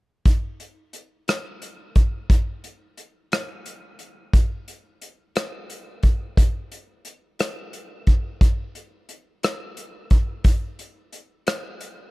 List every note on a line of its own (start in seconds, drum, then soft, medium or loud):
0.25 kick medium
0.25 closed hi-hat medium
0.60 closed hi-hat soft
0.93 closed hi-hat soft
1.28 cross-stick medium
1.28 closed hi-hat medium
1.62 closed hi-hat soft
1.96 kick medium
1.96 closed hi-hat soft
2.30 kick medium
2.30 closed hi-hat medium
2.64 closed hi-hat soft
2.97 closed hi-hat soft
3.32 cross-stick medium
3.32 closed hi-hat medium
3.66 closed hi-hat soft
3.99 closed hi-hat soft
4.33 kick medium
4.33 closed hi-hat medium
4.68 closed hi-hat soft
5.02 closed hi-hat soft
5.36 cross-stick medium
5.36 closed hi-hat medium
5.70 closed hi-hat soft
6.03 kick medium
6.03 closed hi-hat soft
6.37 kick medium
6.37 closed hi-hat medium
6.72 closed hi-hat soft
7.05 closed hi-hat soft
7.39 cross-stick medium
7.39 closed hi-hat medium
7.73 closed hi-hat soft
8.07 kick medium
8.07 closed hi-hat soft
8.41 kick medium
8.41 closed hi-hat medium
8.75 closed hi-hat soft
9.09 closed hi-hat soft
9.43 cross-stick medium
9.43 closed hi-hat medium
9.77 closed hi-hat soft
10.10 kick medium
10.10 closed hi-hat soft
10.44 kick medium
10.44 closed hi-hat medium
10.79 closed hi-hat soft
11.13 closed hi-hat soft
11.47 cross-stick medium
11.47 closed hi-hat medium
11.81 closed hi-hat soft